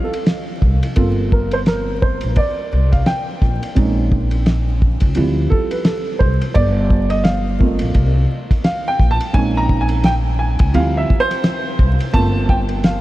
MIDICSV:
0, 0, Header, 1, 4, 480
1, 0, Start_track
1, 0, Key_signature, -2, "minor"
1, 0, Tempo, 697674
1, 671, Time_signature, 4, 2, 24, 8
1, 8950, End_track
2, 0, Start_track
2, 0, Title_t, "Upright piano"
2, 0, Program_c, 0, 0
2, 27, Note_on_c, 0, 69, 78
2, 252, Note_off_c, 0, 69, 0
2, 660, Note_on_c, 0, 69, 61
2, 662, Note_on_c, 0, 58, 54
2, 665, Note_on_c, 0, 60, 55
2, 667, Note_on_c, 0, 65, 66
2, 912, Note_on_c, 0, 70, 73
2, 1054, Note_on_c, 0, 72, 81
2, 1059, Note_off_c, 0, 70, 0
2, 1089, Note_off_c, 0, 72, 0
2, 1150, Note_on_c, 0, 70, 80
2, 1374, Note_off_c, 0, 70, 0
2, 1390, Note_on_c, 0, 72, 73
2, 1631, Note_on_c, 0, 74, 98
2, 1638, Note_off_c, 0, 72, 0
2, 2011, Note_on_c, 0, 77, 88
2, 2026, Note_off_c, 0, 74, 0
2, 2108, Note_on_c, 0, 79, 90
2, 2112, Note_off_c, 0, 77, 0
2, 2558, Note_off_c, 0, 69, 0
2, 2559, Note_off_c, 0, 58, 0
2, 2560, Note_off_c, 0, 60, 0
2, 2561, Note_off_c, 0, 65, 0
2, 2581, Note_on_c, 0, 56, 59
2, 2587, Note_on_c, 0, 60, 53
2, 2588, Note_on_c, 0, 61, 52
2, 2590, Note_on_c, 0, 63, 60
2, 2802, Note_off_c, 0, 79, 0
2, 3518, Note_off_c, 0, 56, 0
2, 3521, Note_off_c, 0, 60, 0
2, 3522, Note_off_c, 0, 61, 0
2, 3523, Note_off_c, 0, 63, 0
2, 3544, Note_on_c, 0, 53, 58
2, 3549, Note_on_c, 0, 55, 51
2, 3549, Note_on_c, 0, 60, 52
2, 3554, Note_on_c, 0, 64, 63
2, 3784, Note_on_c, 0, 69, 84
2, 3929, Note_on_c, 0, 71, 69
2, 3935, Note_off_c, 0, 69, 0
2, 4022, Note_on_c, 0, 69, 75
2, 4031, Note_off_c, 0, 71, 0
2, 4240, Note_off_c, 0, 53, 0
2, 4242, Note_off_c, 0, 55, 0
2, 4242, Note_off_c, 0, 60, 0
2, 4245, Note_off_c, 0, 64, 0
2, 4260, Note_on_c, 0, 72, 80
2, 4274, Note_off_c, 0, 69, 0
2, 4488, Note_off_c, 0, 72, 0
2, 4502, Note_on_c, 0, 74, 102
2, 4885, Note_on_c, 0, 75, 95
2, 4901, Note_off_c, 0, 74, 0
2, 4979, Note_off_c, 0, 75, 0
2, 4979, Note_on_c, 0, 77, 94
2, 5223, Note_on_c, 0, 57, 53
2, 5226, Note_on_c, 0, 58, 51
2, 5228, Note_on_c, 0, 60, 48
2, 5229, Note_on_c, 0, 65, 55
2, 5678, Note_off_c, 0, 77, 0
2, 5920, Note_off_c, 0, 57, 0
2, 5921, Note_off_c, 0, 58, 0
2, 5922, Note_off_c, 0, 60, 0
2, 5922, Note_off_c, 0, 65, 0
2, 5946, Note_on_c, 0, 77, 89
2, 6108, Note_on_c, 0, 79, 100
2, 6113, Note_off_c, 0, 77, 0
2, 6266, Note_on_c, 0, 81, 97
2, 6274, Note_off_c, 0, 79, 0
2, 6420, Note_on_c, 0, 56, 59
2, 6425, Note_on_c, 0, 60, 54
2, 6426, Note_on_c, 0, 80, 109
2, 6427, Note_on_c, 0, 61, 54
2, 6428, Note_on_c, 0, 63, 66
2, 6433, Note_off_c, 0, 81, 0
2, 6586, Note_on_c, 0, 82, 99
2, 6593, Note_off_c, 0, 80, 0
2, 6748, Note_on_c, 0, 80, 94
2, 6753, Note_off_c, 0, 82, 0
2, 6915, Note_off_c, 0, 80, 0
2, 6916, Note_on_c, 0, 79, 104
2, 6969, Note_off_c, 0, 79, 0
2, 7148, Note_on_c, 0, 80, 88
2, 7358, Note_off_c, 0, 56, 0
2, 7360, Note_off_c, 0, 60, 0
2, 7361, Note_off_c, 0, 61, 0
2, 7362, Note_off_c, 0, 63, 0
2, 7385, Note_on_c, 0, 53, 58
2, 7387, Note_on_c, 0, 55, 50
2, 7391, Note_on_c, 0, 60, 52
2, 7392, Note_on_c, 0, 64, 65
2, 7393, Note_on_c, 0, 77, 101
2, 7396, Note_off_c, 0, 80, 0
2, 7549, Note_on_c, 0, 76, 89
2, 7557, Note_off_c, 0, 77, 0
2, 7706, Note_on_c, 0, 72, 112
2, 7715, Note_off_c, 0, 76, 0
2, 7724, Note_off_c, 0, 53, 0
2, 7726, Note_off_c, 0, 55, 0
2, 7728, Note_off_c, 0, 60, 0
2, 7728, Note_off_c, 0, 64, 0
2, 8161, Note_off_c, 0, 72, 0
2, 8344, Note_on_c, 0, 57, 59
2, 8347, Note_on_c, 0, 58, 57
2, 8349, Note_on_c, 0, 65, 63
2, 8349, Note_on_c, 0, 81, 110
2, 8350, Note_on_c, 0, 60, 52
2, 8597, Note_off_c, 0, 81, 0
2, 8597, Note_on_c, 0, 79, 89
2, 8650, Note_off_c, 0, 79, 0
2, 8837, Note_on_c, 0, 77, 92
2, 8950, Note_off_c, 0, 57, 0
2, 8950, Note_off_c, 0, 58, 0
2, 8950, Note_off_c, 0, 60, 0
2, 8950, Note_off_c, 0, 65, 0
2, 8950, Note_off_c, 0, 77, 0
2, 8950, End_track
3, 0, Start_track
3, 0, Title_t, "Upright bass"
3, 0, Program_c, 1, 32
3, 429, Note_on_c, 1, 36, 91
3, 547, Note_off_c, 1, 36, 0
3, 669, Note_on_c, 1, 31, 101
3, 1505, Note_off_c, 1, 31, 0
3, 1537, Note_on_c, 1, 34, 87
3, 1615, Note_off_c, 1, 34, 0
3, 1875, Note_on_c, 1, 36, 90
3, 2069, Note_off_c, 1, 36, 0
3, 2352, Note_on_c, 1, 34, 92
3, 2469, Note_off_c, 1, 34, 0
3, 2594, Note_on_c, 1, 34, 100
3, 3428, Note_off_c, 1, 34, 0
3, 3455, Note_on_c, 1, 37, 88
3, 3534, Note_off_c, 1, 37, 0
3, 3556, Note_on_c, 1, 38, 100
3, 3750, Note_off_c, 1, 38, 0
3, 4272, Note_on_c, 1, 36, 87
3, 4389, Note_off_c, 1, 36, 0
3, 4511, Note_on_c, 1, 31, 105
3, 5346, Note_off_c, 1, 31, 0
3, 5377, Note_on_c, 1, 34, 89
3, 5455, Note_off_c, 1, 34, 0
3, 5471, Note_on_c, 1, 36, 100
3, 5667, Note_off_c, 1, 36, 0
3, 6188, Note_on_c, 1, 34, 89
3, 6306, Note_off_c, 1, 34, 0
3, 6430, Note_on_c, 1, 34, 102
3, 7266, Note_off_c, 1, 34, 0
3, 7293, Note_on_c, 1, 37, 91
3, 7373, Note_off_c, 1, 37, 0
3, 7392, Note_on_c, 1, 38, 109
3, 7588, Note_off_c, 1, 38, 0
3, 8113, Note_on_c, 1, 36, 91
3, 8229, Note_off_c, 1, 36, 0
3, 8356, Note_on_c, 1, 31, 104
3, 8950, Note_off_c, 1, 31, 0
3, 8950, End_track
4, 0, Start_track
4, 0, Title_t, "Drums"
4, 92, Note_on_c, 9, 51, 64
4, 161, Note_off_c, 9, 51, 0
4, 182, Note_on_c, 9, 44, 47
4, 182, Note_on_c, 9, 51, 72
4, 184, Note_on_c, 9, 38, 113
4, 251, Note_off_c, 9, 44, 0
4, 251, Note_off_c, 9, 51, 0
4, 253, Note_off_c, 9, 38, 0
4, 427, Note_on_c, 9, 36, 89
4, 495, Note_off_c, 9, 36, 0
4, 569, Note_on_c, 9, 51, 65
4, 638, Note_off_c, 9, 51, 0
4, 660, Note_on_c, 9, 51, 77
4, 667, Note_on_c, 9, 36, 102
4, 728, Note_off_c, 9, 51, 0
4, 736, Note_off_c, 9, 36, 0
4, 909, Note_on_c, 9, 36, 96
4, 978, Note_off_c, 9, 36, 0
4, 1041, Note_on_c, 9, 51, 58
4, 1110, Note_off_c, 9, 51, 0
4, 1142, Note_on_c, 9, 44, 44
4, 1142, Note_on_c, 9, 51, 60
4, 1147, Note_on_c, 9, 38, 105
4, 1211, Note_off_c, 9, 44, 0
4, 1211, Note_off_c, 9, 51, 0
4, 1215, Note_off_c, 9, 38, 0
4, 1393, Note_on_c, 9, 36, 95
4, 1461, Note_off_c, 9, 36, 0
4, 1519, Note_on_c, 9, 51, 66
4, 1588, Note_off_c, 9, 51, 0
4, 1622, Note_on_c, 9, 51, 66
4, 1628, Note_on_c, 9, 36, 86
4, 1691, Note_off_c, 9, 51, 0
4, 1697, Note_off_c, 9, 36, 0
4, 2012, Note_on_c, 9, 38, 37
4, 2014, Note_on_c, 9, 36, 93
4, 2014, Note_on_c, 9, 51, 64
4, 2081, Note_off_c, 9, 38, 0
4, 2082, Note_off_c, 9, 51, 0
4, 2083, Note_off_c, 9, 36, 0
4, 2106, Note_on_c, 9, 44, 47
4, 2106, Note_on_c, 9, 51, 65
4, 2108, Note_on_c, 9, 38, 112
4, 2174, Note_off_c, 9, 44, 0
4, 2174, Note_off_c, 9, 51, 0
4, 2176, Note_off_c, 9, 38, 0
4, 2351, Note_on_c, 9, 36, 86
4, 2354, Note_on_c, 9, 38, 33
4, 2420, Note_off_c, 9, 36, 0
4, 2422, Note_off_c, 9, 38, 0
4, 2495, Note_on_c, 9, 51, 63
4, 2564, Note_off_c, 9, 51, 0
4, 2589, Note_on_c, 9, 51, 73
4, 2592, Note_on_c, 9, 36, 96
4, 2658, Note_off_c, 9, 51, 0
4, 2661, Note_off_c, 9, 36, 0
4, 2833, Note_on_c, 9, 36, 96
4, 2901, Note_off_c, 9, 36, 0
4, 2966, Note_on_c, 9, 51, 57
4, 3034, Note_off_c, 9, 51, 0
4, 3068, Note_on_c, 9, 44, 44
4, 3068, Note_on_c, 9, 51, 58
4, 3073, Note_on_c, 9, 38, 104
4, 3137, Note_off_c, 9, 44, 0
4, 3137, Note_off_c, 9, 51, 0
4, 3142, Note_off_c, 9, 38, 0
4, 3315, Note_on_c, 9, 36, 92
4, 3384, Note_off_c, 9, 36, 0
4, 3442, Note_on_c, 9, 51, 69
4, 3452, Note_on_c, 9, 36, 98
4, 3511, Note_off_c, 9, 51, 0
4, 3521, Note_off_c, 9, 36, 0
4, 3541, Note_on_c, 9, 51, 72
4, 3610, Note_off_c, 9, 51, 0
4, 3796, Note_on_c, 9, 36, 88
4, 3865, Note_off_c, 9, 36, 0
4, 3928, Note_on_c, 9, 51, 64
4, 3997, Note_off_c, 9, 51, 0
4, 4023, Note_on_c, 9, 44, 51
4, 4023, Note_on_c, 9, 51, 72
4, 4025, Note_on_c, 9, 38, 116
4, 4091, Note_off_c, 9, 44, 0
4, 4091, Note_off_c, 9, 51, 0
4, 4093, Note_off_c, 9, 38, 0
4, 4270, Note_on_c, 9, 36, 93
4, 4339, Note_off_c, 9, 36, 0
4, 4413, Note_on_c, 9, 51, 63
4, 4482, Note_off_c, 9, 51, 0
4, 4504, Note_on_c, 9, 51, 74
4, 4510, Note_on_c, 9, 36, 105
4, 4572, Note_off_c, 9, 51, 0
4, 4579, Note_off_c, 9, 36, 0
4, 4750, Note_on_c, 9, 36, 96
4, 4819, Note_off_c, 9, 36, 0
4, 4884, Note_on_c, 9, 51, 58
4, 4953, Note_off_c, 9, 51, 0
4, 4984, Note_on_c, 9, 44, 44
4, 4984, Note_on_c, 9, 51, 58
4, 4989, Note_on_c, 9, 38, 115
4, 5053, Note_off_c, 9, 44, 0
4, 5053, Note_off_c, 9, 51, 0
4, 5058, Note_off_c, 9, 38, 0
4, 5233, Note_on_c, 9, 36, 93
4, 5302, Note_off_c, 9, 36, 0
4, 5359, Note_on_c, 9, 51, 67
4, 5427, Note_off_c, 9, 51, 0
4, 5465, Note_on_c, 9, 51, 65
4, 5469, Note_on_c, 9, 36, 88
4, 5534, Note_off_c, 9, 51, 0
4, 5538, Note_off_c, 9, 36, 0
4, 5853, Note_on_c, 9, 36, 95
4, 5853, Note_on_c, 9, 38, 35
4, 5854, Note_on_c, 9, 51, 65
4, 5922, Note_off_c, 9, 36, 0
4, 5922, Note_off_c, 9, 38, 0
4, 5923, Note_off_c, 9, 51, 0
4, 5946, Note_on_c, 9, 44, 50
4, 5946, Note_on_c, 9, 51, 69
4, 5948, Note_on_c, 9, 38, 117
4, 6015, Note_off_c, 9, 44, 0
4, 6015, Note_off_c, 9, 51, 0
4, 6017, Note_off_c, 9, 38, 0
4, 6188, Note_on_c, 9, 36, 91
4, 6189, Note_on_c, 9, 38, 33
4, 6257, Note_off_c, 9, 36, 0
4, 6258, Note_off_c, 9, 38, 0
4, 6332, Note_on_c, 9, 51, 68
4, 6401, Note_off_c, 9, 51, 0
4, 6425, Note_on_c, 9, 51, 72
4, 6428, Note_on_c, 9, 36, 106
4, 6494, Note_off_c, 9, 51, 0
4, 6497, Note_off_c, 9, 36, 0
4, 6669, Note_on_c, 9, 36, 96
4, 6738, Note_off_c, 9, 36, 0
4, 6802, Note_on_c, 9, 51, 55
4, 6870, Note_off_c, 9, 51, 0
4, 6905, Note_on_c, 9, 44, 47
4, 6905, Note_on_c, 9, 51, 64
4, 6910, Note_on_c, 9, 38, 109
4, 6974, Note_off_c, 9, 44, 0
4, 6974, Note_off_c, 9, 51, 0
4, 6978, Note_off_c, 9, 38, 0
4, 7286, Note_on_c, 9, 51, 71
4, 7293, Note_on_c, 9, 36, 97
4, 7355, Note_off_c, 9, 51, 0
4, 7361, Note_off_c, 9, 36, 0
4, 7390, Note_on_c, 9, 51, 72
4, 7459, Note_off_c, 9, 51, 0
4, 7638, Note_on_c, 9, 36, 95
4, 7707, Note_off_c, 9, 36, 0
4, 7779, Note_on_c, 9, 38, 39
4, 7780, Note_on_c, 9, 51, 68
4, 7848, Note_off_c, 9, 38, 0
4, 7849, Note_off_c, 9, 51, 0
4, 7869, Note_on_c, 9, 44, 51
4, 7869, Note_on_c, 9, 51, 75
4, 7871, Note_on_c, 9, 38, 114
4, 7938, Note_off_c, 9, 44, 0
4, 7938, Note_off_c, 9, 51, 0
4, 7940, Note_off_c, 9, 38, 0
4, 8112, Note_on_c, 9, 36, 91
4, 8181, Note_off_c, 9, 36, 0
4, 8258, Note_on_c, 9, 51, 65
4, 8327, Note_off_c, 9, 51, 0
4, 8352, Note_on_c, 9, 51, 70
4, 8353, Note_on_c, 9, 36, 103
4, 8421, Note_off_c, 9, 36, 0
4, 8421, Note_off_c, 9, 51, 0
4, 8594, Note_on_c, 9, 36, 97
4, 8662, Note_off_c, 9, 36, 0
4, 8728, Note_on_c, 9, 51, 55
4, 8797, Note_off_c, 9, 51, 0
4, 8831, Note_on_c, 9, 44, 45
4, 8831, Note_on_c, 9, 51, 63
4, 8836, Note_on_c, 9, 38, 114
4, 8900, Note_off_c, 9, 44, 0
4, 8900, Note_off_c, 9, 51, 0
4, 8905, Note_off_c, 9, 38, 0
4, 8950, End_track
0, 0, End_of_file